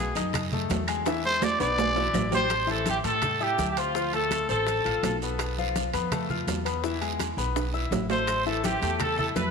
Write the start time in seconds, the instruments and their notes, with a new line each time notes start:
Already playing: upright bass B1, trumpet G#4
0.15 upright bass F#2, grand piano D#4 D#5 D#6, high bongo, high conga, high timbale, short guiro, maracas
0.33 high bongo, high conga, low conga, high timbale, long guiro, claves, maracas
0.52 grand piano A3 A4 A5, high bongo, high conga, low conga, maracas
0.70 upright bass E2, high bongo, low bongo, high conga, high timbale, low timbale, short guiro, maracas
0.88 grand piano G#3 G#4 G#5, high conga, high timbale, short guiro, claves, maracas
1.06 grand piano E3 E4 E5, high bongo, high conga, high timbale, long guiro, maracas
1.24 grand piano G#3 G#4 G#5, trumpet C5, high bongo, high conga, maracas
1.42 trumpet D5, high bongo, high conga, low timbale, short guiro, claves, maracas
1.60 upright bass B1, grand piano B3 B4 B5, trumpet D5, high bongo, high conga, high timbale, short guiro, maracas
1.78 grand piano G#3 G#4 G#5, high bongo, high conga, low timbale, long guiro, maracas
1.96 grand piano E3 E4 E5, high bongo, high conga, low timbale, maracas
2.13 upright bass A1, high bongo, low bongo, high conga, low timbale, short guiro, claves, maracas
2.31 grand piano G3 G4 G5, high conga, low timbale, short guiro, maracas
2.35 trumpet section C5
2.50 high bongo, high conga, high timbale, long guiro, maracas
2.67 grand piano E3 E4 E5, trumpet section A4, high bongo, high conga, maracas
2.86 trumpet section G4, high bongo, high conga, high timbale, short guiro, maracas
3.04 upright bass A2, grand piano A3 A4 A5, trumpet section A4, high bongo, high conga, high timbale, short guiro, maracas
3.22 grand piano G3 G4 G5, high bongo, high conga, low conga, high timbale, long guiro, maracas
3.40 grand piano E4 E5 E6, trumpet section G4, high bongo, high conga, maracas
3.58 upright bass D2, high bongo, low bongo, high conga, high timbale, short guiro, maracas
3.71 trumpet section G4
3.77 grand piano C4 C5 C6, trumpet section F4, high conga, high timbale, short guiro, maracas
3.95 grand piano F3 F4 F5, high bongo, high conga, long guiro, maracas
4.13 grand piano A3 A4 A5, trumpet section A4, high bongo, high conga, high timbale, maracas
4.31 high bongo, high conga, high timbale, short guiro, maracas
4.49 upright bass A1, grand piano C4 C5 C6, trumpet section A4, high bongo, high conga, short guiro, maracas
4.67 high bongo, high conga, high timbale, long guiro, maracas
4.85 upright bass A1, grand piano F4 F5 F6, high bongo, high conga, high timbale, maracas
5.03 upright bass B1, high bongo, low bongo, high conga, high timbale, low timbale, short guiro, maracas
5.22 grand piano B3 B4 B5, short guiro, maracas
5.39 high bongo, high conga, high timbale, long guiro, maracas
5.58 grand piano F3 F4 F5, high bongo, high conga, maracas
5.76 high bongo, high conga, high timbale, short guiro, maracas
5.93 upright bass F2, grand piano B3 B4 B5, high bongo, high conga, high timbale, short guiro, maracas
6.12 grand piano A3 A4 A5, high bongo, high conga, low conga, high timbale, long guiro, maracas
6.30 grand piano F4 F5 F6, high bongo, high conga, low conga, maracas
6.47 upright bass E2, high bongo, low bongo, high conga, high timbale, low timbale, short guiro, maracas
6.65 grand piano B3 B4 B5, high conga, high timbale, short guiro, maracas
6.83 grand piano E3 E4 E5, high bongo, high conga, long guiro, maracas
7.01 grand piano G#3 G#4 G#5, high bongo, high conga, high timbale, maracas
7.20 high bongo, high conga, high timbale, short guiro, maracas
7.37 upright bass B1, grand piano B3 B4 B5, high bongo, high conga, short guiro, maracas
7.56 high bongo, high conga, high timbale, long guiro, maracas
7.74 grand piano E4 E5 E6, high bongo, high conga, maracas
7.91 upright bass A1, high bongo, low bongo, high conga, low timbale, short guiro, maracas
8.10 grand piano A3 A4 A5, trumpet section C5, low timbale, short guiro, maracas
8.27 high bongo, high conga, high timbale, long guiro, claves, maracas
8.46 grand piano E3 E4 E5, trumpet section A4, high bongo, high conga, maracas
8.64 trumpet section G4, high bongo, high conga, high timbale, short guiro, maracas
8.82 upright bass E2, grand piano A3 A4 A5, high bongo, high conga, high timbale, short guiro, maracas
8.99 grand piano G3 G4 G5, trumpet section A4, high bongo, high conga, low conga, high timbale, long guiro, claves, maracas
9.17 grand piano E4 E5 E6, trumpet section A4, high bongo, high conga, low conga, maracas
9.36 upright bass F2, trumpet section B4, high bongo, low bongo, high conga, high timbale, low timbale, short guiro, maracas